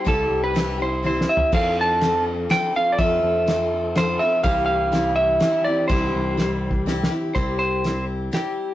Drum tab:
CC |---------|x--------|---------|---------|
RD |x--x-----|x--x--x--|x--x--x--|x--x--x--|
HH |---------|---------|---------|---------|
SD |---o---o-|---o--o--|---o--o--|---o--o--|
T1 |------o--|---------|---------|---------|
FT |--------o|---------|---------|---------|
BD |o--------|o--------|o--------|o--------|

CC |---------|---------|
RD |x--------|---------|
HH |---------|x--x--x--|
SD |---o--oo-|---o--o--|
T1 |---------|---------|
FT |---------|---------|
BD |o----o---|o--------|